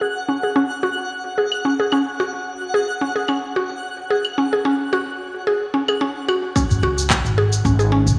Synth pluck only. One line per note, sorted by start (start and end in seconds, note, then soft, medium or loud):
0.01 0.27 G#4 medium
0.29 0.42 C#4 medium
0.43 0.55 G#4 medium
0.56 0.70 C#4 loud
0.83 0.97 F#4 medium
1.38 1.64 G#4 medium
1.65 1.79 C#4 medium
1.80 1.91 G#4 medium
1.92 2.06 C#4 loud
2.20 2.34 F#4 medium
2.74 3.00 G#4 medium
3.01 3.15 C#4 medium
3.16 3.27 G#4 medium
3.29 3.42 C#4 loud
3.56 3.70 F#4 medium
4.10 4.36 G#4 medium
4.38 4.52 C#4 medium
4.53 4.64 G#4 medium
4.65 4.79 C#4 loud
4.93 5.06 F#4 medium
5.47 5.73 G#4 medium
5.74 5.88 C#4 medium
5.89 6.00 G#4 medium
6.01 6.15 C#4 medium
6.28 6.42 F#4 loud
6.56 6.70 C#4 loud
6.83 6.97 F#4 loud
7.38 7.64 G#4 medium
7.65 7.79 C#4 medium
7.79 7.91 G#4 medium
7.92 8.06 C#4 medium